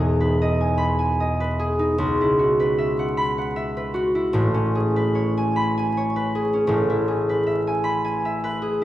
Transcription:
harp
Already playing: E1 E2 D#4 B4
0.00 G#4
0.20 B4
0.42 D#5
0.61 G#5
0.78 B5
0.99 G#5
1.20 D#5
1.40 B4
1.59 G#4
1.79 D#4
1.98 C#2
2.21 E4
2.39 F#4
2.60 B4
2.78 E5
2.99 F#5
3.17 B5
3.38 F#5
3.56 E5
3.77 B4
3.94 F#4
4.15 E4
4.33 A1 A2
4.54 C#4
4.75 G#4
4.96 B4
5.15 C#5
5.37 G#5
5.56 B5
5.78 G#5
5.97 C#5
6.16 B4
6.35 G#4
6.54 C#4
6.67 A1 A2
6.90 E4
7.08 G#4
7.29 B4
7.47 E5
7.67 G#5
7.84 B5
8.05 G#5
8.25 E5
8.44 B4
8.62 G#4

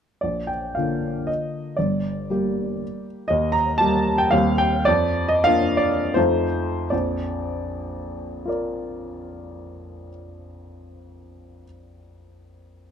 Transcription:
grand piano
0.21 A#1 D5
0.47 G5
0.75 D3 A#3 F4 F5
1.27 D#5
1.76 G1 D5
2.30 G3 A#3 G4
3.28 D#2 D#5
3.52 A#5
3.78 G3 A#3 G4 A5
4.18 G5
4.31 D#2 G3 C4 G4 F5
4.58 G5
4.85 F2 D5
5.28 D#5
5.44 A#3 D4 F4 F5
5.77 D5
6.14 F2 A3 D#4 F4 C5
6.90 A#1 F2 D5
8.45 F4 A#4 D5

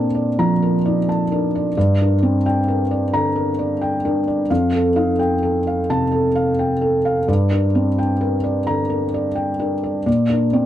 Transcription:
felt piano
Already playing: A#2 C4 D4 A#4 D5 A5
0.15 D5
0.39 F3 A#5
0.62 A#4
0.85 D#4 D5
1.09 A5
1.32 D4 A#4
1.55 D5
1.77 G2 D5
2.01 D4 A#4
2.23 C4 D5
2.46 D4 G5
2.68 A#4
2.91 D5
3.13 D3 A#5
3.36 A#4
3.59 D5
3.81 G5
4.05 D4 A#4
4.28 D5
4.50 F2 F5
4.72 A4
4.96 D#4 F5
5.19 G5
5.43 A4
5.67 F5
5.90 C3 A5
6.11 A4
6.35 F5
6.59 G5
6.81 A4
7.05 F5
7.28 G2 D5
7.51 D4 A#4
7.75 C4 D5
7.98 D4 G5
8.21 A#4
8.44 D5
8.67 D3 A#5
8.90 A#4
9.14 D5
9.35 G5
9.59 D4 A#4
9.83 D5
10.06 A#2 D5
10.30 D4 A#4
10.53 C4 D5

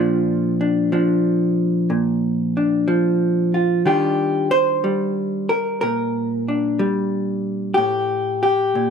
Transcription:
hollow-body jazz guitar
Already playing: A#2 F3 D4 F4
0.61 D4
0.92 F3 D4
1.90 A#2
2.57 D4
2.88 F3
3.54 F4
3.86 D#3 G3 D4 F4 G4
4.51 C5
4.84 G3
5.49 A#4
5.81 A#2 A#4
6.48 D4
6.79 G3
7.74 A2 G4
8.43 G4
8.75 A#2

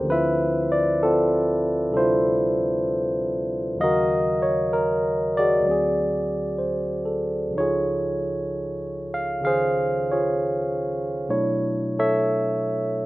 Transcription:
tine electric piano
Already playing: C5
0.00 D2 D3
0.06 F3 C4
0.10 E4 F4 B4 E5
0.72 D5
1.03 C4 F4 A4
1.91 C3 G3 D4 A4
1.97 E4 F4 C5
3.76 D#2 D#3 F#3
3.80 C#3 F#4 A#4 D#5 F5
4.42 C#5
4.73 A#4
5.37 F#4 G#4 D5
5.60 D2 D3
5.65 F#3 C4
5.71 G#4
6.58 C5
7.05 A4
7.48 C#2 C#3
7.54 F3 D#4
7.58 F4 G#4 C#5
9.14 F5
9.41 C#3 D#3 C#4 G#4
9.45 G#4 C5 F5
10.11 F4 G#4 C#5
11.29 B2 F#3 A3 D4 E4 C#5
11.99 A4 C#5 E5

